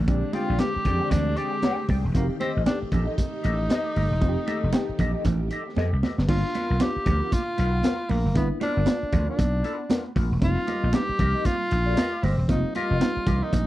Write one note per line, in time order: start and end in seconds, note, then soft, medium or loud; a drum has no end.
0.00 2.11 D3 medium
0.07 0.21 A#1 loud
0.07 0.51 G#3 medium
0.07 2.13 G#3 medium
0.07 2.13 C4 medium
0.07 0.51 C4 medium
0.07 0.51 D4 medium
0.07 0.35 D4 medium
0.07 6.25 G4 medium
0.07 0.52 G4 medium
0.07 kick loud
0.07 closed hi-hat medium
0.33 0.61 F4 loud
0.33 0.53 G#4 medium
0.33 0.54 D5 medium
0.33 0.54 G5 medium
0.33 closed hi-hat medium
0.33 muted conga medium
0.49 0.58 A#1 medium
0.59 1.43 G#3 medium
0.59 1.43 C4 medium
0.59 1.43 D4 medium
0.59 1.12 G4 loud
0.59 1.43 G4 medium
0.59 muted clean electric guitar stroke soft
0.59 snare loud
0.59 clap medium
0.59 closed hi-hat medium
0.59 high conga medium
0.75 muted clean electric guitar stroke medium
0.75 muted slap bass stroke soft
0.85 0.99 F2 medium
0.85 1.01 G#4 medium
0.85 1.01 D5 medium
0.85 1.00 G5 medium
0.85 kick medium
0.85 closed hi-hat medium
0.85 low conga medium
1.01 1.10 G#4 medium
1.01 1.11 D5 medium
1.01 1.12 G5 medium
1.11 1.34 D2 medium
1.11 1.39 D4 loud
1.11 muted clean electric guitar stroke soft
1.11 kick medium
1.11 closed hi-hat loud
1.11 muted conga medium
1.11 low conga medium
1.27 muted clean electric guitar stroke soft
1.36 1.89 G4 loud
1.36 1.57 G#4 medium
1.36 1.53 D5 medium
1.36 1.52 G5 medium
1.36 closed hi-hat medium
1.36 muted conga soft
1.53 muted clean electric guitar stroke soft
1.62 1.84 G#4 medium
1.62 1.78 D5 medium
1.62 1.77 G5 medium
1.62 snare loud
1.62 clap medium
1.62 closed hi-hat medium
1.62 high conga medium
1.78 muted clean electric guitar stroke soft
1.89 2.02 C2 medium
1.89 2.06 G#4 medium
1.89 2.04 D5 medium
1.89 2.03 G5 medium
1.89 kick medium
1.89 open hi-hat medium
1.89 high conga medium
2.04 2.14 E1 medium
2.04 muted clean electric guitar stroke soft
2.14 2.28 F1 loud
2.14 6.25 D#3 medium
2.14 2.58 A3 medium
2.14 6.25 A3 medium
2.14 2.27 A#3 medium
2.14 2.58 C4 medium
2.14 2.58 D#4 medium
2.14 2.23 F#4 medium
2.14 kick loud
2.14 closed hi-hat medium
2.22 2.62 G4 medium
2.40 2.52 C4 loud
2.40 2.60 G4 medium
2.40 2.61 A4 medium
2.40 2.61 D#5 medium
2.40 closed hi-hat medium
2.40 muted conga medium
2.57 2.65 A1 medium
2.66 3.49 A3 medium
2.66 3.50 C4 medium
2.66 2.78 D4 loud
2.66 3.50 D#4 medium
2.66 3.50 G4 medium
2.66 muted clean electric guitar stroke soft
2.66 snare loud
2.66 clap medium
2.66 closed hi-hat medium
2.66 high conga medium
2.82 muted clean electric guitar stroke soft
2.82 muted slap bass stroke soft
2.91 3.06 A#1 loud
2.91 5.73 D#4 loud
2.91 3.08 G4 medium
2.91 3.06 A4 medium
2.91 3.06 D#5 medium
2.91 kick medium
2.91 closed hi-hat medium
2.91 low conga medium
3.07 3.16 G4 medium
3.07 3.17 A4 medium
3.07 3.17 D#5 medium
3.17 muted clean electric guitar stroke soft
3.17 kick medium
3.17 closed hi-hat loud
3.17 muted conga medium
3.33 muted clean electric guitar stroke soft
3.43 3.67 A1 medium
3.43 3.64 G4 medium
3.43 3.59 A4 loud
3.43 3.57 D#5 medium
3.43 closed hi-hat medium
3.43 muted conga soft
3.59 muted clean electric guitar stroke soft
3.69 3.90 G4 medium
3.69 3.86 A4 medium
3.69 3.84 D#5 loud
3.69 snare loud
3.69 clap medium
3.69 closed hi-hat loud
3.69 high conga medium
3.86 muted clean electric guitar stroke medium
3.95 4.09 G1 medium
3.95 4.12 G4 medium
3.95 4.11 A4 medium
3.95 4.10 D#5 medium
3.95 open hi-hat medium
3.95 high conga medium
4.11 4.22 E1 medium
4.11 muted clean electric guitar stroke soft
4.21 4.35 F1 loud
4.21 4.65 A3 medium
4.21 4.65 C4 medium
4.21 4.65 D#4 medium
4.21 4.30 F4 medium
4.21 kick loud
4.21 closed hi-hat medium
4.29 4.69 G4 medium
4.47 4.67 G4 medium
4.47 4.68 A4 medium
4.47 4.68 D#5 medium
4.47 closed hi-hat medium
4.47 muted conga medium
4.63 4.72 F1 medium
4.73 5.57 A3 medium
4.73 5.57 C4 medium
4.73 5.57 D#4 medium
4.73 5.57 G4 loud
4.73 muted clean electric guitar stroke soft
4.73 snare medium
4.73 clap medium
4.73 closed hi-hat medium
4.73 high conga medium
4.89 muted clean electric guitar stroke soft
4.89 muted slap bass stroke soft
4.99 5.13 A#1 loud
4.99 5.15 G4 medium
4.99 5.13 A4 medium
4.99 5.12 D#5 medium
4.99 kick loud
4.99 closed hi-hat medium
4.99 low conga medium
5.14 5.24 G4 medium
5.14 5.25 A4 medium
5.14 5.25 D#5 medium
5.25 5.47 A1 loud
5.25 muted clean electric guitar stroke soft
5.25 kick medium
5.25 closed hi-hat medium
5.25 muted conga medium
5.25 low conga medium
5.40 muted clean electric guitar stroke medium
5.51 5.71 G4 medium
5.51 5.66 A4 medium
5.51 5.65 D#5 medium
5.51 closed hi-hat medium
5.51 muted conga soft
5.66 muted clean electric guitar stroke soft
5.76 5.90 F2 medium
5.76 5.97 G4 medium
5.76 5.93 A4 medium
5.76 5.92 D#5 medium
5.76 snare medium
5.76 high conga medium
5.93 6.02 C2 medium
5.93 muted clean electric guitar stroke soft
6.03 6.20 G4 medium
6.03 6.18 A4 medium
6.03 6.17 D#5 medium
6.03 snare medium
6.03 high conga medium
6.18 6.27 F#1 medium
6.18 muted clean electric guitar stroke soft
6.18 snare medium
6.27 6.42 G1 loud
6.27 6.71 A#3 medium
6.27 6.72 B3 medium
6.27 6.72 D4 medium
6.27 6.72 F4 medium
6.27 6.83 F4 loud
6.27 kick loud
6.27 crash loud
6.54 6.74 B3 medium
6.54 6.75 F4 medium
6.54 6.75 A#4 loud
6.54 closed hi-hat medium
6.54 muted conga medium
6.70 6.79 B1 medium
6.80 7.63 A#3 medium
6.80 7.64 B3 medium
6.80 7.64 D4 medium
6.80 7.64 F4 medium
6.80 7.35 G4 loud
6.80 muted clean electric guitar stroke medium
6.80 snare loud
6.80 clap medium
6.80 closed hi-hat medium
6.80 high conga medium
6.96 muted slap bass stroke soft
7.06 7.20 D2 loud
7.06 7.23 B3 medium
7.06 7.22 F4 medium
7.06 7.21 A#4 medium
7.06 kick loud
7.06 closed hi-hat medium
7.06 low conga medium
7.22 7.31 B3 soft
7.22 7.32 F4 medium
7.22 7.32 A#4 medium
7.32 8.12 F4 loud
7.32 muted clean electric guitar stroke soft
7.32 kick loud
7.32 closed hi-hat medium
7.32 muted conga medium
7.48 muted clean electric guitar stroke soft
7.58 7.81 B1 medium
7.58 7.78 B3 medium
7.58 7.73 F4 loud
7.58 7.72 A#4 loud
7.58 closed hi-hat medium
7.58 muted conga soft
7.73 muted clean electric guitar stroke soft
7.83 8.03 B3 medium
7.83 7.98 F4 loud
7.83 7.98 A#4 loud
7.83 snare loud
7.83 clap medium
7.83 closed hi-hat medium
7.83 high conga medium
7.99 muted clean electric guitar stroke medium
8.09 8.23 A#1 medium
8.09 8.36 A#3 medium
8.09 8.26 B3 medium
8.09 8.25 F4 medium
8.09 8.24 A#4 medium
8.09 open hi-hat medium
8.09 high conga medium
8.25 8.34 F#1 medium
8.25 muted clean electric guitar stroke medium
8.35 8.49 G1 loud
8.35 8.78 A#3 medium
8.35 8.79 B3 medium
8.35 8.48 B3 medium
8.35 8.79 D4 medium
8.35 8.79 E4 medium
8.35 kick loud
8.35 closed hi-hat loud
8.60 8.81 B3 medium
8.60 9.25 D4 loud
8.60 8.81 F4 medium
8.60 8.82 A#4 loud
8.60 closed hi-hat medium
8.60 muted conga medium
8.77 8.86 G1 medium
8.86 9.70 A#3 medium
8.86 9.70 B3 medium
8.86 9.70 D4 medium
8.86 9.71 F4 medium
8.86 snare loud
8.86 clap medium
8.86 closed hi-hat medium
8.86 high conga medium
9.02 muted clean electric guitar stroke soft
9.02 muted slap bass stroke soft
9.12 9.26 D2 loud
9.12 9.28 B3 medium
9.12 9.27 F4 medium
9.12 9.26 A#4 medium
9.12 kick loud
9.12 closed hi-hat medium
9.12 low conga medium
9.27 9.37 B3 medium
9.27 10.03 D4 medium
9.27 9.37 F4 medium
9.27 9.38 A#4 medium
9.38 9.61 B1 loud
9.38 muted clean electric guitar stroke soft
9.38 kick loud
9.38 closed hi-hat loud
9.38 muted conga medium
9.53 muted clean electric guitar stroke soft
9.63 9.85 B3 medium
9.63 9.79 F4 loud
9.63 9.78 A#4 loud
9.63 closed hi-hat medium
9.63 muted conga soft
9.79 muted clean electric guitar stroke medium
9.89 10.10 B3 medium
9.89 10.05 F4 loud
9.89 10.04 A#4 loud
9.89 snare loud
9.89 clap medium
9.89 closed hi-hat loud
9.89 high conga medium
10.06 muted clean electric guitar stroke medium
10.15 10.30 A#1 loud
10.15 10.33 B3 medium
10.15 10.32 F4 medium
10.15 10.30 A#4 medium
10.15 kick loud
10.15 open hi-hat medium
10.15 high conga medium
10.32 10.41 E1 medium
10.32 muted clean electric guitar stroke medium
10.41 10.55 F1 loud
10.41 10.85 G3 medium
10.41 10.85 A#3 medium
10.41 10.85 C4 medium
10.41 10.86 D#4 medium
10.41 10.96 F4 loud
10.41 kick loud
10.41 closed hi-hat loud
10.67 10.88 G4 medium
10.67 10.88 A#4 medium
10.67 10.88 D#5 loud
10.67 closed hi-hat medium
10.67 muted conga medium
10.83 10.92 A#1 medium
10.93 11.77 G3 medium
10.93 11.77 A#3 medium
10.93 11.77 C4 medium
10.93 11.02 D4 medium
10.93 11.48 G4 loud
10.93 muted clean electric guitar stroke soft
10.93 snare loud
10.93 clap medium
10.93 closed hi-hat medium
10.93 high conga medium
11.01 11.81 D#4 medium
11.09 muted clean electric guitar stroke medium
11.09 muted slap bass stroke soft
11.19 11.33 C2 medium
11.19 11.35 G4 medium
11.19 11.34 A#4 medium
11.19 11.33 D#5 medium
11.19 kick loud
11.19 closed hi-hat medium
11.19 low conga medium
11.34 11.44 G4 medium
11.34 11.45 A#4 medium
11.34 11.46 D#5 medium
11.45 12.25 F4 loud
11.45 muted clean electric guitar stroke soft
11.45 kick medium
11.45 closed hi-hat medium
11.45 muted conga medium
11.61 muted clean electric guitar stroke soft
11.71 11.94 A#1 medium
11.71 closed hi-hat medium
11.71 muted conga soft
11.86 11.95 G4 medium
11.86 11.96 A#4 medium
11.86 11.97 D#5 medium
11.96 12.17 G4 medium
11.96 12.13 A#4 loud
11.96 12.11 D#5 loud
11.96 snare loud
11.96 clap medium
11.96 closed hi-hat loud
11.96 high conga medium
12.13 muted clean electric guitar stroke soft
12.22 12.37 G1 loud
12.22 12.49 C4 medium
12.22 12.40 G4 medium
12.22 12.39 A#4 medium
12.22 12.37 D#5 medium
12.22 open hi-hat medium
12.22 high conga medium
12.38 12.47 E1 loud
12.38 muted clean electric guitar stroke soft
12.48 12.63 F1 loud
12.48 12.92 G3 medium
12.48 12.92 A#3 medium
12.48 12.93 C4 medium
12.48 12.74 D#4 medium
12.48 12.93 F4 medium
12.48 kick loud
12.48 closed hi-hat medium
12.75 13.44 F4 loud
12.75 12.95 G4 medium
12.75 12.96 A#4 medium
12.75 12.96 D#5 medium
12.75 closed hi-hat medium
12.75 muted conga medium
12.91 13.00 F1 medium
13.00 13.67 G3 medium
13.00 13.67 A#3 medium
13.00 13.67 C4 medium
13.00 13.67 D#4 medium
13.00 snare loud
13.00 clap medium
13.00 closed hi-hat medium
13.00 high conga medium
13.16 muted clean electric guitar stroke soft
13.16 muted slap bass stroke soft
13.27 13.40 C2 medium
13.27 13.43 G4 medium
13.27 13.43 A#4 medium
13.27 13.42 D#5 medium
13.27 kick loud
13.27 closed hi-hat medium
13.27 low conga medium
13.43 13.67 D#4 medium
13.43 13.52 G4 medium
13.43 13.53 A#4 medium
13.43 13.53 D#5 medium
13.53 13.67 A#1 loud
13.53 muted clean electric guitar stroke soft
13.53 kick loud
13.53 closed hi-hat medium
13.53 muted conga medium